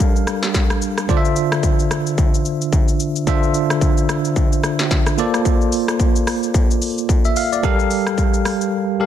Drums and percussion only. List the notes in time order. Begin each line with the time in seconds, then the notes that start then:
0.00 kick, shaker
0.16 shaker
0.27 cross-stick, shaker
0.43 snare, shaker
0.54 kick, snare, shaker
0.70 cross-stick, shaker
0.82 shaker
0.98 cross-stick, shaker
1.09 kick, shaker
1.25 shaker
1.36 shaker
1.52 cross-stick, shaker
1.63 kick, shaker
1.79 shaker
1.91 cross-stick, shaker
2.07 shaker
2.18 kick, shaker
2.34 shaker
2.45 shaker
2.62 shaker
2.73 kick, shaker
2.88 shaker
3.00 shaker
3.16 shaker
3.27 kick, shaker
3.43 shaker
3.54 shaker
3.70 cross-stick, shaker
3.81 kick, shaker
3.97 shaker
4.09 cross-stick, shaker
4.25 shaker
4.36 kick, shaker
4.52 shaker
4.64 cross-stick, shaker
4.79 snare, shaker
4.91 kick, snare, shaker
5.06 cross-stick, shaker
5.18 shaker
5.34 cross-stick, shaker
5.45 kick, shaker
5.61 shaker
5.72 open hi-hat, shaker
5.88 cross-stick, shaker
6.00 kick, shaker
6.16 shaker
6.27 cross-stick, open hi-hat, shaker
6.43 shaker
6.54 kick, shaker
6.71 shaker
6.82 open hi-hat, shaker
6.98 shaker
7.09 kick, shaker
7.25 shaker
7.36 open hi-hat, shaker
7.53 shaker
7.63 kick, shaker
7.79 shaker
7.91 open hi-hat, shaker
8.07 cross-stick, shaker
8.18 kick, shaker
8.34 shaker
8.45 cross-stick, open hi-hat, shaker
8.61 shaker